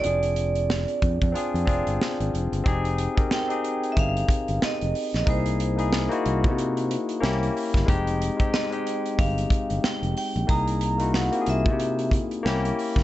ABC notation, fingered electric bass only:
X:1
M:4/4
L:1/16
Q:"Swing 16ths" 1/4=92
K:Fdor
V:1 name="Fingered electric bass" clef=bass
F,,,4- F,,, z F,, F,, z F,, F,,, G,,, z A,,, F,,, G,,, | F,,,3 z4 z G,,,2 z G,,, z F,,, z B,,, | C,,4- C,, z C,, C,4 z C,,2 z G,,, | F,,,3 z4 z G,,,2 z G,,, z F,,, z B,,, |
C,,4- C,, z C,, C,4 z C,,2 z G,,, |]